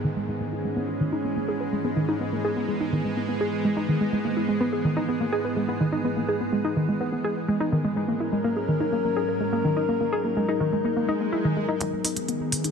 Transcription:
Already playing: G#2 D#3 G#3 B3 G#4, downlifter
0.04 D#3
0.16 G#3
0.28 E3 G#3 C#4 G#4
0.40 A#3
0.52 E4
0.65 G#3
0.76 B3
0.89 G#4
1.00 D#3
1.12 D#4
1.25 B3
1.36 A#3
1.48 G#4
1.60 B4
1.72 G#3
1.84 B3
1.97 D#3
2.08 D#4
2.20 B3
2.33 A#3
2.44 G#4
2.56 B3
2.69 G#3
2.81 D#4
2.92 D#3
3.05 G#3
3.17 B3
3.29 B3
3.41 G#4
3.65 G#3
3.77 D#4
3.89 D#3
4.01 G#3
4.12 G#3
4.25 A#3
4.37 E4
4.48 G#3
4.60 B3
4.73 G#4
4.84 D#3
4.97 D#4
5.09 B3
5.20 A#3
5.32 G#4
5.44 B4
5.56 G#3
5.68 B3
5.80 D#3
5.92 D#4
6.04 B3
6.17 A#3
6.29 G#4
6.41 B3
6.53 G#3
6.65 D#4
6.76 D#3
6.88 G#3
7.00 B3
7.12 B3
7.24 G#4
7.48 G#3
7.60 D#4
7.72 D#3
7.84 G#3
7.96 F#3 G#3 C#4 A#4
8.08 A#3
8.20 E4
8.32 G#3
8.44 A#3
8.56 G#4
8.68 D#3
8.80 D#4
8.92 A#3
9.05 A#3
9.17 G#4
9.29 A#4
9.40 G#3
9.53 A#3
9.65 D#3
9.77 D#4
9.88 A#3 D#4
10.01 A#3
10.12 G#4
10.24 A#3
10.37 G#3
10.48 D#4
10.60 D#3
10.73 G#3
10.84 A#3, swell
10.96 A#3
11.08 D#4
11.21 A#3
11.32 E4
11.45 D#3
11.57 G#3
11.68 D#4
11.80 G#1 D#3 G#3 B3 G#4, closed hi-hat, riser
11.93 A#3
12.04 D#4, open hi-hat
12.16 G#3, closed hi-hat
12.28 B3, closed hi-hat
12.40 G#4
12.52 D#3, open hi-hat
12.64 D#4, closed hi-hat

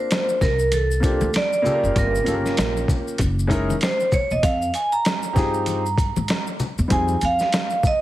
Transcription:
Already playing: A#3 C4 D4 F4 A#4 C5
0.11 snare, closed hi-hat, maracas
0.29 maracas
0.41 C2 A#4, kick, snare, low conga, maracas, shaker
0.59 maracas
0.72 A4, closed hi-hat, high conga, maracas
0.91 maracas
1.00 A#3 C4 D4 F4, kick, closed hi-hat, maracas, shaker
1.05 G4
1.21 D2, high conga, maracas
1.33 D5, snare, closed hi-hat, maracas
1.53 maracas
1.62 C#3 A#3 F4 G4, shaker
1.66 A4, low conga, maracas
1.72 A#4
1.83 F#1, maracas
1.96 G1 A#4, kick, closed hi-hat, maracas
2.15 maracas
2.24 G1 A#3 C#4 F4 G4, closed hi-hat, shaker, maracas
2.28 A4
2.34 A#4
2.46 snare, maracas
2.57 A#1, snare, closed hi-hat, maracas
2.77 maracas
2.88 kick, low conga, shaker, maracas
3.08 maracas
3.18 F#1, kick, closed hi-hat, high conga, maracas
3.39 maracas
3.47 G#3 C#4 D#4 E4, kick, closed hi-hat, shaker
3.51 A#4, maracas
3.70 high conga, maracas
3.81 C5, snare, closed hi-hat, maracas
4.00 maracas
4.12 C#5, kick, low conga, shaker, maracas
4.31 E1 D#5, maracas
4.43 F2 F5, kick, closed hi-hat, maracas
4.62 maracas
4.74 G#5, closed hi-hat, shaker, maracas
4.92 A#5, maracas
5.05 snare, closed hi-hat, maracas
5.23 maracas
5.33 G2 C4 D#4 F4 G4 G#4, kick, low conga, maracas, shaker
5.37 snare
5.54 maracas
5.66 closed hi-hat, high conga, maracas
5.86 maracas
5.98 kick, closed hi-hat, shaker, maracas
6.16 G#2, high conga, maracas
6.28 snare, closed hi-hat, maracas
6.47 maracas
6.60 low conga, shaker, maracas
6.78 E2, maracas
6.88 F2 G3 C4 D#4 F4 G#4 G#5, kick, closed hi-hat, maracas
7.08 maracas
7.21 F2 F5, closed hi-hat, maracas, shaker
7.39 snare, maracas
7.53 snare, closed hi-hat, maracas
7.70 maracas
7.83 D#5, kick, low conga, maracas, shaker

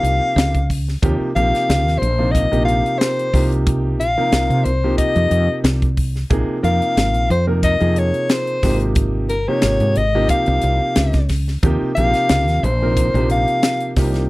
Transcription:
Already playing: C3 F3 A#3 D#4 G4 F5
0.03 C2, closed hi-hat
0.36 C#2, snare, closed hi-hat
0.55 kick, closed hi-hat
0.70 kick, open hi-hat
0.88 snare
1.02 D#2 C3 F3 A#3 D#4 G4, kick, closed hi-hat
1.21 muted fretless electric bass stroke
1.36 A#1 C3 F3 A#3 D#4 G4 F5, closed hi-hat
1.55 snare, closed hi-hat
1.69 C#2, snare, closed hi-hat
1.86 D#2, snare, closed hi-hat
1.99 A#1 C5
2.03 closed hi-hat
2.19 C3 F3 A#3 D#4 F4
2.31 D#5, kick
2.35 closed hi-hat
2.51 A#1 C3 F3 A#3 D#4 G4, closed hi-hat
2.65 F5, closed hi-hat
2.86 closed hi-hat
2.99 C5, snare, closed hi-hat
3.19 closed hi-hat
3.33 C2 C3 F3 A#3 D#4 G4, kick, open hi-hat
3.52 closed hi-hat
3.67 kick, closed hi-hat
3.99 A#1 F5, closed hi-hat
4.17 C3 F3 A#3 D#4 A#4
4.32 C2, snare, closed hi-hat
4.50 C3, closed hi-hat
4.65 C2 C5, closed hi-hat
4.84 C3 F3 A#3 D#4 G4
4.98 D#5, kick, closed hi-hat
5.16 F2, closed hi-hat
5.31 F2, closed hi-hat
5.64 C2, snare, closed hi-hat
5.82 kick, closed hi-hat
5.97 kick, open hi-hat
6.16 snare
6.30 A#1 C3 F3 A#3 D#4 G#4, kick, closed hi-hat
6.48 muted fretless electric bass stroke
6.63 F2 C3 F3 A#3 D#4 A#4 F5, closed hi-hat
6.82 closed hi-hat
6.97 G#1, snare, closed hi-hat
7.14 A#1, closed hi-hat
7.30 F2 C5, closed hi-hat
7.47 C3 F3 A#3 D#4 A#4
7.63 D#5, kick, closed hi-hat
7.80 F2 C3 F3 A#3 D#4 G#4, closed hi-hat
7.96 C#5, closed hi-hat
8.14 closed hi-hat
8.29 C5, snare, closed hi-hat
8.47 closed hi-hat
8.63 G#1 C3 F3 A#3 D#4 G4, kick, snare, open hi-hat
8.81 closed hi-hat
8.95 kick, closed hi-hat
9.29 G1 A#4, closed hi-hat
9.48 C3 F3 A#3 D#4 G4 C#5
9.62 G#1, snare, closed hi-hat
9.80 G#2, closed hi-hat
9.96 G#1 D#5, closed hi-hat
10.15 C3 F3 A#3 D#4 G4
10.29 F5, kick, closed hi-hat
10.46 C2, closed hi-hat
10.62 C2, closed hi-hat
10.96 C#2, snare, closed hi-hat
11.13 kick, snare, closed hi-hat
11.29 kick, snare, open hi-hat
11.48 snare
11.63 D#2 C3 F3 A#3 D#4 G4, kick, closed hi-hat
11.82 muted fretless electric bass stroke
11.95 A#1 C3 F3 A#3 D#4 G4 F5, closed hi-hat
12.14 snare, closed hi-hat
12.29 C#2, snare, closed hi-hat
12.48 D#2, snare, closed hi-hat
12.63 A#1 C5, closed hi-hat
12.82 C3 F3 A#3 D#4 A#4
12.97 kick, closed hi-hat
13.14 A#1 C3 F3 A#3 D#4 G4, closed hi-hat
13.30 F5, closed hi-hat
13.48 closed hi-hat
13.63 snare, closed hi-hat
13.80 closed hi-hat
13.96 C2 C3 F3 A#3 D#4 G4, kick, snare, open hi-hat
14.14 snare, closed hi-hat

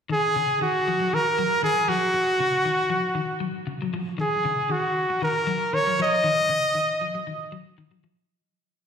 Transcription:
0.09 D#3 G#4
0.36 C#3
0.61 D#3 F#4
0.88 F3
1.00 F#3
1.13 D#3 A#4
1.38 F#3
1.63 D#3 G#4
1.88 F3 F#4
2.14 muted clean electric guitar stroke
2.40 C#3
2.65 D#3
2.90 F3
3.15 D#3
3.40 F#3
3.67 C#3
3.82 F#3
3.94 F3
4.18 D#3 G#4
4.45 C#3
4.70 D#3 F#4
5.10 muted clean electric guitar stroke
5.22 D#3 A#4
5.47 F#3
5.73 D#3 C#5
5.87 F#3
5.99 F3 D#5
6.24 D#3
6.49 C#3
6.75 D#3
7.01 F3
7.15 F#3
7.27 D#3
7.52 F#3
7.78 D#3
7.91 F#3
8.04 F3

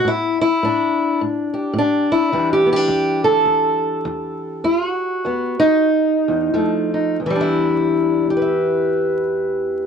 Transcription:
0.05 A2 E4
0.41 E4
0.63 A2 D4
1.21 A2
1.54 G4
1.73 A2
1.78 D4
2.12 E4
2.32 E2 E3 G3 D4
2.53 G4
2.66 B3
2.73 D4 G4
2.88 E2
3.24 A4
3.45 E2
4.05 E2
4.64 E2 F4
4.86 F#4
5.25 E2 B3
5.59 D#4
6.28 E2
6.54 F2 F3 A3
6.94 D#4
7.20 E2
7.26 E3
7.30 G3
7.36 D4
7.41 E4
8.30 G4
8.37 B4
8.42 E5

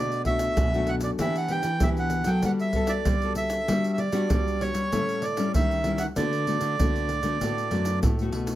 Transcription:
Already playing: B2 A3 D4 F#4 D5
0.12 pandeiro, shaker
0.25 A3 D4 F#4 E5, pandeiro, surdo
0.39 pandeiro, shaker
0.57 F#2 B2, pandeiro, shaker, surdo
0.74 A3 D4 F#4, pandeiro, shaker
0.87 F#5, pandeiro
1.01 D5, pandeiro, shaker
1.19 E3 B3 D4 G4 E5, pandeiro, shaker, surdo
1.35 F#5, pandeiro, shaker
1.48 B3 D4 G4 G5, pandeiro
1.63 E3, pandeiro, shaker
1.80 B2 E3 B3 D4 G4 E5, pandeiro, shaker, surdo
1.97 F#5, pandeiro, shaker
2.10 pandeiro, shaker
2.24 F#3 B3 F#4 A4 G5, pandeiro, shaker
2.43 G3 F#5, pandeiro, shaker, surdo
2.59 E5, pandeiro, shaker
2.73 B3 F#4 A4, pandeiro, surdo
2.87 D5, pandeiro, shaker
3.05 D3 G3, pandeiro, shaker, surdo
3.22 B3 F#4 A4, pandeiro, shaker
3.35 E5, pandeiro, shaker
3.50 pandeiro, shaker
3.68 G3 B3 D4 F#4, pandeiro, shaker, surdo
3.84 pandeiro, shaker
3.93 E5
3.98 D5, pandeiro
4.12 G3 B3 D4 F#4, pandeiro, shaker
4.30 G3, pandeiro, shaker, surdo
4.48 pandeiro, shaker
4.61 B3 D4 F#4 C#5, pandeiro
4.74 G3, pandeiro, shaker
4.92 A2 G3 A3 C#4 E4, pandeiro, shaker, surdo
5.09 pandeiro, shaker
5.22 D5, pandeiro
5.37 G3 C#4 E4, pandeiro, shaker
5.54 D#3 E5, pandeiro, shaker, surdo
5.71 pandeiro, shaker
5.84 G3 C#4 E4, pandeiro
5.98 F#5, pandeiro, shaker
6.16 D3 A3 B3 F#4 D5, pandeiro, shaker, surdo
6.33 pandeiro, shaker
6.47 A3 B3 F#4, pandeiro
6.61 D3, pandeiro, shaker
6.79 A2 D3 A3 B3 F#4, pandeiro, shaker, surdo
6.96 pandeiro, shaker
7.09 pandeiro
7.23 D3 A3 B3 F#4, pandeiro, shaker
7.41 A2 D3 A3 B3 F#4, pandeiro, shaker, surdo
7.58 pandeiro, shaker
7.71 F#2 A3 B3 F#4, pandeiro
7.85 pandeiro, shaker
8.03 A2, pandeiro, shaker, surdo
8.19 A3 B3 F#4, pandeiro, shaker
8.32 B2, pandeiro
8.47 pandeiro, shaker

